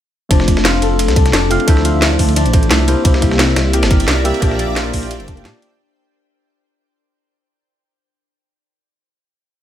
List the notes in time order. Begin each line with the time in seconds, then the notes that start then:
0.29 F1 A3 C4 D4 F4 C5, kick, closed hi-hat, ride
0.40 snare
0.48 kick, closed hi-hat, ride
0.57 F1, snare
0.65 F4, snare, closed hi-hat, ride
0.74 snare
0.82 F1 A4, closed hi-hat, ride
0.99 closed hi-hat, ride
1.08 C2, snare, closed hi-hat
1.16 D4, kick, closed hi-hat, ride
1.26 snare, closed hi-hat
1.33 F1 D4, snare, closed hi-hat, ride
1.50 A3 C4 D4 F4 F5, closed hi-hat, ride
1.60 ride
1.66 D2 F3 A3 D4 E4 C5 E5, kick, closed hi-hat, ride
1.77 snare
1.85 F4, closed hi-hat, ride
1.94 D2
2.02 snare, closed hi-hat, ride
2.19 D2 D4, kick, open hi-hat, ride
2.29 ride
2.36 D4, closed hi-hat, ride
2.46 A1, closed hi-hat
2.53 A3 D4 E4 F4 C5, kick, closed hi-hat, ride
2.63 closed hi-hat
2.71 C2 E4, snare, closed hi-hat, ride
2.87 A#3 C4 E4 G4 A#4 C5, closed hi-hat, ride
3.03 C2 A#3 C4 E4 G4 A#4 C5 D5 E5, kick, closed hi-hat, ride
3.14 snare
3.22 E4, kick, closed hi-hat, ride
3.31 C2, snare
3.39 E4, snare, closed hi-hat, ride
3.49 snare
3.56 C2, snare, closed hi-hat, ride
3.73 G4, closed hi-hat, ride
3.83 G1, snare, closed hi-hat, ride
3.91 A#4, kick, closed hi-hat
4.00 closed hi-hat, ride
4.08 C2, snare, closed hi-hat, ride
4.24 A#3 C4 E4 G4 E5, closed hi-hat, ride
4.34 ride
4.41 A#1 A#3 D4 F4 G4 C5 G5, kick, closed hi-hat, ride
4.51 snare
4.59 closed hi-hat, ride
4.68 A#1
4.76 F4, snare, closed hi-hat, ride
4.94 A#1 G4, kick, open hi-hat, ride
5.03 ride
5.11 closed hi-hat, ride
5.20 F1, closed hi-hat
5.28 D4, kick, closed hi-hat, ride
5.36 A#3 D4 F4 G4 D5, closed hi-hat
5.45 A#2 D4, snare, closed hi-hat, ride
5.62 closed hi-hat, ride